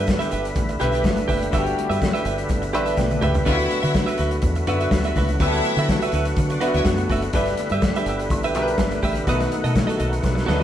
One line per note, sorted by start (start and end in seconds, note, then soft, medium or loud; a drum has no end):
0.00 0.16 G2 loud
0.00 7.29 D3 medium
0.00 0.45 G3 medium
0.00 3.43 G3 medium
0.00 10.63 B3 medium
0.00 0.46 D4 medium
0.00 0.46 E4 medium
0.00 5.36 E4 medium
0.00 0.46 B4 loud
0.07 muted clean electric guitar stroke soft
0.07 kick loud
0.07 snare loud
0.07 high conga medium
0.07 shaker medium
0.19 0.30 G4 medium
0.19 0.31 B4 medium
0.19 0.32 E5 medium
0.19 closed hi-hat medium
0.19 shaker medium
0.31 0.52 G1 medium
0.31 0.48 G4 medium
0.31 0.45 B4 medium
0.31 0.43 E5 medium
0.31 closed hi-hat medium
0.31 shaker medium
0.44 muted clean electric guitar stroke soft
0.44 closed hi-hat medium
0.44 shaker medium
0.55 0.76 A1 loud
0.55 muted clean electric guitar stroke soft
0.55 kick loud
0.55 closed hi-hat medium
0.55 muted conga medium
0.55 low conga medium
0.55 shaker medium
0.68 muted clean electric guitar stroke medium
0.68 closed hi-hat soft
0.68 shaker medium
0.79 1.00 B1 loud
0.79 1.45 G3 medium
0.79 1.45 D4 medium
0.79 1.45 E4 medium
0.79 0.93 G4 medium
0.79 0.92 B4 medium
0.79 1.45 B4 medium
0.79 0.91 E5 medium
0.79 closed hi-hat medium
0.79 shaker medium
0.92 1.03 G4 medium
0.92 1.04 B4 medium
0.92 1.04 E5 medium
0.92 closed hi-hat medium
0.92 shaker medium
1.04 1.24 G1 medium
1.04 muted clean electric guitar stroke medium
1.04 kick loud
1.04 snare loud
1.04 high conga loud
1.04 shaker medium
1.16 muted clean electric guitar stroke soft
1.16 closed hi-hat soft
1.16 high conga medium
1.16 shaker medium
1.28 1.48 F#1 loud
1.28 1.48 G4 medium
1.28 1.42 B4 medium
1.28 1.40 E5 medium
1.28 kick loud
1.28 open hi-hat medium
1.28 high conga medium
1.28 shaker medium
1.41 muted clean electric guitar stroke soft
1.41 closed hi-hat medium
1.41 shaker medium
1.51 1.73 G1 loud
1.51 2.38 G3 loud
1.51 2.39 D4 medium
1.51 2.39 E4 medium
1.51 1.59 F#4 medium
1.51 1.73 G4 medium
1.51 1.66 B4 medium
1.51 1.64 E5 medium
1.51 kick loud
1.51 closed hi-hat medium
1.51 shaker medium
1.58 2.42 G4 loud
1.66 muted clean electric guitar stroke soft
1.66 closed hi-hat soft
1.66 shaker medium
1.77 muted clean electric guitar stroke soft
1.77 closed hi-hat medium
1.77 muted conga medium
1.90 2.09 G2 loud
1.90 2.00 G4 medium
1.90 2.00 B4 medium
1.90 2.01 E5 medium
1.90 closed hi-hat soft
1.90 shaker medium
2.01 muted clean electric guitar stroke soft
2.01 kick medium
2.01 snare loud
2.01 high conga loud
2.01 shaker medium
2.13 2.23 G4 medium
2.13 2.24 B4 medium
2.13 2.25 E5 medium
2.13 closed hi-hat medium
2.13 shaker medium
2.24 2.45 G1 medium
2.24 2.41 G4 medium
2.24 2.38 B4 medium
2.24 2.37 E5 medium
2.24 closed hi-hat medium
2.24 shaker medium
2.38 muted clean electric guitar stroke medium
2.38 closed hi-hat medium
2.38 shaker medium
2.49 2.74 G1 medium
2.49 muted clean electric guitar stroke soft
2.49 kick loud
2.49 closed hi-hat medium
2.49 muted conga medium
2.49 shaker medium
2.62 muted clean electric guitar stroke medium
2.62 closed hi-hat soft
2.62 shaker medium
2.73 2.94 A1 loud
2.73 3.38 G3 medium
2.73 3.38 D4 medium
2.73 3.38 E4 medium
2.73 2.87 G4 medium
2.73 2.86 B4 medium
2.73 2.98 B4 loud
2.73 2.85 E5 medium
2.73 closed hi-hat medium
2.73 shaker medium
2.85 2.96 G4 medium
2.85 2.97 B4 medium
2.85 2.97 E5 medium
2.85 closed hi-hat soft
2.85 shaker medium
2.97 3.17 B1 medium
2.97 3.21 E5 medium
2.97 3.20 G5 medium
2.97 kick loud
2.97 snare medium
2.97 high conga medium
2.97 shaker medium
3.10 muted clean electric guitar stroke soft
3.10 high tom medium
3.10 high conga medium
3.10 shaker medium
3.21 3.42 C#2 loud
3.21 3.41 G4 medium
3.21 3.68 G4 medium
3.21 3.68 B4 medium
3.21 3.35 B4 medium
3.21 3.33 E5 loud
3.21 mid tom loud
3.21 high conga medium
3.21 shaker medium
3.34 muted clean electric guitar stroke medium
3.34 floor tom loud
3.34 shaker medium
3.45 3.66 D2 medium
3.45 4.32 D3 medium
3.45 7.30 F#3 medium
3.45 4.32 B3 medium
3.45 4.15 E4 loud
3.45 4.33 E4 medium
3.45 3.53 F4 medium
3.45 3.65 F#4 medium
3.45 3.59 B4 medium
3.45 4.15 E5 loud
3.45 3.57 E5 medium
3.45 kick loud
3.45 closed hi-hat medium
3.45 shaker medium
3.52 4.36 F#4 loud
3.59 muted clean electric guitar stroke soft
3.59 closed hi-hat medium
3.59 shaker medium
3.70 muted clean electric guitar stroke soft
3.70 closed hi-hat medium
3.70 muted conga medium
3.70 shaker medium
3.83 4.03 D3 medium
3.83 3.93 F#4 medium
3.83 3.94 B4 medium
3.83 3.94 E5 medium
3.83 closed hi-hat medium
3.83 shaker medium
3.94 muted clean electric guitar stroke soft
3.94 kick loud
3.94 snare loud
3.94 high conga medium
3.94 shaker medium
4.06 4.17 F#4 medium
4.06 4.18 B4 medium
4.06 4.19 E5 medium
4.06 closed hi-hat medium
4.06 shaker medium
4.18 4.38 D2 medium
4.18 4.35 F#4 medium
4.18 4.32 B4 medium
4.18 4.31 E5 medium
4.18 closed hi-hat medium
4.18 shaker medium
4.31 muted clean electric guitar stroke soft
4.31 closed hi-hat soft
4.31 shaker medium
4.42 4.63 E2 loud
4.42 muted clean electric guitar stroke soft
4.42 kick loud
4.42 closed hi-hat medium
4.42 muted conga medium
4.42 low conga medium
4.42 shaker medium
4.55 muted clean electric guitar stroke medium
4.55 closed hi-hat soft
4.55 shaker medium
4.67 4.87 F#2 medium
4.67 5.32 D3 medium
4.67 5.32 B3 medium
4.67 5.32 E4 medium
4.67 4.81 F#4 medium
4.67 5.32 F#4 medium
4.67 4.81 B4 medium
4.67 4.79 E5 medium
4.67 closed hi-hat medium
4.67 shaker medium
4.80 4.91 F#4 medium
4.80 4.92 B4 medium
4.80 4.93 E5 medium
4.80 closed hi-hat medium
4.80 shaker medium
4.91 5.11 D2 medium
4.91 muted clean electric guitar stroke medium
4.91 kick loud
4.91 snare loud
4.91 high conga medium
4.91 shaker medium
5.03 5.15 F#4 medium
5.03 5.17 B4 medium
5.03 5.17 E5 medium
5.03 closed hi-hat soft
5.03 high conga medium
5.03 shaker medium
5.15 5.36 C#2 loud
5.15 5.36 F#4 medium
5.15 5.30 B4 medium
5.15 5.28 E5 medium
5.15 kick medium
5.15 open hi-hat medium
5.15 high conga medium
5.15 shaker medium
5.28 muted clean electric guitar stroke soft
5.28 closed hi-hat soft
5.28 shaker medium
5.40 5.59 D2 loud
5.40 6.26 D3 medium
5.40 6.27 B3 medium
5.40 6.09 E4 loud
5.40 6.27 E4 medium
5.40 5.60 F#4 loud
5.40 7.32 F#4 medium
5.40 5.47 G4 medium
5.40 5.54 B4 medium
5.40 6.09 E5 loud
5.40 5.53 E5 medium
5.40 kick loud
5.40 closed hi-hat medium
5.40 muted conga soft
5.40 shaker medium
5.48 6.30 A4 loud
5.53 muted clean electric guitar stroke soft
5.53 snare soft
5.53 closed hi-hat soft
5.53 shaker medium
5.64 muted clean electric guitar stroke soft
5.64 closed hi-hat medium
5.64 muted conga medium
5.64 shaker medium
5.77 5.96 D3 loud
5.77 5.89 F#4 medium
5.77 5.89 B4 medium
5.77 5.90 E5 medium
5.77 closed hi-hat medium
5.77 shaker medium
5.88 kick loud
5.88 snare loud
5.88 high conga medium
5.88 shaker medium
6.02 6.12 F#4 medium
6.02 6.13 B4 medium
6.02 6.14 E5 medium
6.02 closed hi-hat medium
6.02 shaker medium
6.12 6.32 D2 medium
6.12 6.29 F#4 medium
6.12 6.27 B4 medium
6.12 6.26 E5 medium
6.12 closed hi-hat medium
6.12 shaker medium
6.25 muted clean electric guitar stroke soft
6.25 closed hi-hat medium
6.25 shaker medium
6.37 6.56 D3 loud
6.37 muted clean electric guitar stroke soft
6.37 kick loud
6.37 closed hi-hat medium
6.37 muted conga medium
6.37 shaker medium
6.50 6.60 D4 medium
6.50 6.60 D5 medium
6.50 muted clean electric guitar stroke medium
6.50 closed hi-hat soft
6.50 shaker medium
6.61 7.25 D3 medium
6.61 7.26 B3 medium
6.61 7.26 E4 medium
6.61 6.75 F#4 medium
6.61 7.26 F#4 medium
6.61 6.74 B4 loud
6.61 6.73 E5 loud
6.61 closed hi-hat medium
6.61 shaker medium
6.74 6.83 D2 loud
6.74 6.84 E4 medium
6.74 6.84 F#4 medium
6.74 6.85 B4 medium
6.74 6.86 E5 medium
6.74 6.84 E5 medium
6.74 closed hi-hat soft
6.74 shaker soft
6.85 7.05 F#2 medium
6.85 muted clean electric guitar stroke soft
6.85 kick loud
6.85 snare loud
6.85 high conga medium
6.85 shaker medium
6.97 muted clean electric guitar stroke medium
6.97 closed hi-hat soft
6.97 high conga soft
6.97 shaker medium
7.09 7.29 F#1 medium
7.09 7.29 F#4 medium
7.09 7.24 B4 medium
7.09 7.22 E5 medium
7.09 kick loud
7.09 open hi-hat medium
7.09 high conga medium
7.09 shaker medium
7.22 muted clean electric guitar stroke medium
7.22 closed hi-hat medium
7.22 shaker medium
7.33 7.53 G1 medium
7.33 9.26 D3 medium
7.33 8.20 G3 medium
7.33 9.26 G3 medium
7.33 8.20 D4 medium
7.33 9.26 E4 medium
7.33 8.20 E4 medium
7.33 7.54 G4 medium
7.33 7.49 B4 medium
7.33 8.21 B4 medium
7.33 7.47 E5 medium
7.33 kick loud
7.33 closed hi-hat medium
7.33 shaker medium
7.46 muted clean electric guitar stroke medium
7.46 snare soft
7.46 closed hi-hat soft
7.46 shaker medium
7.57 muted clean electric guitar stroke soft
7.57 closed hi-hat medium
7.57 muted conga medium
7.57 shaker medium
7.69 7.90 G2 loud
7.69 7.83 B4 medium
7.69 7.84 E5 medium
7.69 closed hi-hat medium
7.69 shaker medium
7.74 7.83 G4 soft
7.82 muted clean electric guitar stroke soft
7.82 kick loud
7.82 snare loud
7.82 high conga medium
7.82 shaker medium
7.96 8.06 G4 medium
7.96 8.07 B4 medium
7.96 8.08 E5 medium
7.96 closed hi-hat medium
7.96 shaker medium
8.06 8.31 G1 medium
8.06 8.23 G4 medium
8.06 8.21 B4 medium
8.06 8.20 E5 medium
8.06 closed hi-hat medium
8.06 shaker medium
8.19 muted clean electric guitar stroke medium
8.19 closed hi-hat soft
8.19 shaker medium
8.30 8.55 A1 medium
8.30 muted clean electric guitar stroke soft
8.30 kick loud
8.30 closed hi-hat medium
8.30 muted conga medium
8.30 low conga medium
8.30 shaker medium
8.43 8.54 G4 medium
8.43 8.55 B4 loud
8.43 8.56 E5 loud
8.43 closed hi-hat soft
8.43 shaker medium
8.54 8.74 B1 loud
8.54 9.19 G3 medium
8.54 9.19 D4 medium
8.54 9.20 E4 medium
8.54 8.72 G4 medium
8.54 8.61 A#4 medium
8.54 8.69 B4 medium
8.54 8.67 E5 medium
8.54 closed hi-hat medium
8.54 shaker medium
8.62 9.23 B4 loud
8.67 muted clean electric guitar stroke medium
8.67 closed hi-hat medium
8.67 shaker medium
8.78 8.98 G1 medium
8.78 muted clean electric guitar stroke soft
8.78 kick loud
8.78 snare loud
8.78 high conga medium
8.78 shaker medium
8.91 muted clean electric guitar stroke medium
8.91 closed hi-hat soft
8.91 high conga medium
8.91 shaker soft
9.02 9.22 A1 medium
9.02 9.22 G4 medium
9.02 9.16 B4 medium
9.02 9.15 E5 medium
9.02 kick medium
9.02 open hi-hat medium
9.02 high conga medium
9.02 shaker medium
9.15 muted clean electric guitar stroke soft
9.15 closed hi-hat soft
9.15 shaker medium
9.27 9.47 B1 loud
9.27 10.13 B2 medium
9.27 10.63 D#3 medium
9.27 10.63 A3 medium
9.27 10.14 A3 medium
9.27 10.14 D#4 medium
9.27 9.47 F#4 medium
9.27 10.63 F#4 medium
9.27 9.41 A4 medium
9.27 10.14 B4 medium
9.27 9.39 D#5 medium
9.27 kick loud
9.27 closed hi-hat medium
9.27 muted conga soft
9.27 shaker medium
9.40 muted clean electric guitar stroke medium
9.40 snare soft
9.40 closed hi-hat medium
9.40 shaker soft
9.51 muted clean electric guitar stroke soft
9.51 closed hi-hat medium
9.51 muted conga medium
9.51 shaker medium
9.64 9.83 B2 medium
9.64 9.73 F#4 soft
9.64 9.74 A4 medium
9.64 9.75 D#5 medium
9.64 closed hi-hat medium
9.64 shaker medium
9.75 muted clean electric guitar stroke soft
9.75 kick loud
9.75 snare loud
9.75 high conga medium
9.75 shaker medium
9.87 9.97 F#4 medium
9.87 9.98 A4 medium
9.87 9.99 D#5 medium
9.87 closed hi-hat medium
9.87 shaker medium
9.98 10.19 B1 medium
9.98 10.15 F#4 medium
9.98 10.11 A4 medium
9.98 10.09 D#5 medium
9.98 closed hi-hat medium
9.98 shaker medium
10.10 muted clean electric guitar stroke soft
10.10 closed hi-hat medium
10.10 shaker medium
10.23 10.43 B1 medium
10.23 muted clean electric guitar stroke soft
10.23 kick loud
10.23 snare medium
10.23 muted conga medium
10.23 low conga medium
10.23 shaker medium
10.35 muted clean electric guitar stroke medium
10.35 snare medium
10.35 shaker soft
10.46 10.63 D2 medium
10.46 10.63 B2 medium
10.46 10.63 A3 medium
10.46 10.54 D4 medium
10.46 10.60 F#4 medium
10.46 10.59 A4 medium
10.46 10.63 B4 medium
10.46 10.58 D#5 loud
10.46 snare medium
10.46 shaker soft
10.54 10.63 D#4 medium
10.59 10.63 D#5 medium